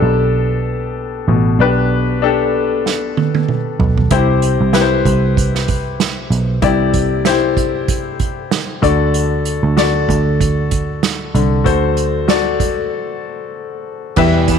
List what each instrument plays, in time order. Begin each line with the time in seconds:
Already playing: grand piano B2 D4 G4 A4 B4
0.02 picked electric bass B1
1.28 picked electric bass A1, grand piano B2
1.59 picked electric bass B1, grand piano D4 G4 B4
2.22 grand piano D4 G4 A4
2.86 snare
3.17 high tom
3.35 high tom
3.48 mid tom
3.79 picked electric bass B1, floor tom
3.98 floor tom
4.11 picked electric bass C2, grand piano C3 E4 G4 C5, kick, closed hi-hat
4.42 closed hi-hat
4.61 picked electric bass C2
4.73 grand piano E4 G4 B4, snare, closed hi-hat
4.81 grand piano C5
5.05 picked electric bass C2, kick, closed hi-hat
5.37 kick, closed hi-hat
5.55 snare
5.68 kick, closed hi-hat
6.00 snare, closed hi-hat
6.30 picked electric bass B1, closed hi-hat
6.62 picked electric bass C2, grand piano C3 E4 G4 D5, kick, closed hi-hat
6.93 kick, closed hi-hat
7.25 grand piano E4 G4 C5, snare, closed hi-hat
7.57 kick, closed hi-hat
7.88 kick, closed hi-hat
8.20 kick, closed hi-hat
8.51 snare, closed hi-hat
8.82 picked electric bass D2, grand piano D3 F#4 A4 D5, kick, closed hi-hat
9.14 closed hi-hat
9.45 closed hi-hat
9.63 picked electric bass D2
9.77 grand piano F#4 A4 D5, snare, closed hi-hat
10.09 picked electric bass D2, kick, closed hi-hat
10.41 kick, closed hi-hat
10.71 kick, closed hi-hat
11.03 snare, closed hi-hat
11.35 picked electric bass C2, grand piano D3, closed hi-hat
11.64 picked electric bass D2, grand piano F#4 A4 C5, kick, closed hi-hat
11.97 closed hi-hat
12.28 grand piano F#4 A4 D5, snare, closed hi-hat
12.60 kick, closed hi-hat
14.16 steel-string acoustic guitar E2 B2 E3 G3 B3 G4, picked electric bass E2, grand piano E3 G4 B4 E5, kick, crash
14.48 steel-string acoustic guitar E3 G3 B3 G4, kick, closed hi-hat